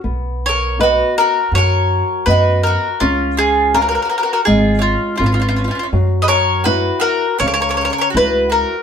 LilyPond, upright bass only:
\new Staff \with { instrumentName = "Upright bass" } { \clef bass \time 4/4 \key b \major \tempo 4 = 81 b,,2 fis,4 fis,4 | cis,2 gis,,4 gis,,4 | fis,2 cis,4 cis,4 | }